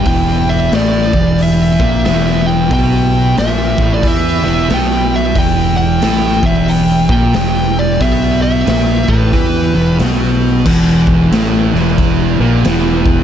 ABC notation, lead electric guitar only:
X:1
M:4/4
L:1/16
Q:"Swing" 1/4=91
K:Em
V:1 name="Lead electric guitar"
g2 e2 d4 e4 e2 g2 | g4 e3 d e4 g2 e2 | g2 g4 e2 g2 g4 d2 | e2 e4 B6 z4 |
z16 |]